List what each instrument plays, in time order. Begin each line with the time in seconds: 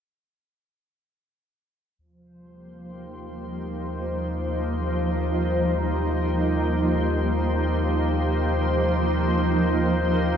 1.97 sub bass D#2, synth drone C3 G3, ambient pad F3
2.21 ambient pad C5
2.34 ambient pad A#3
2.42 ambient pad G4
2.74 ambient pad D#4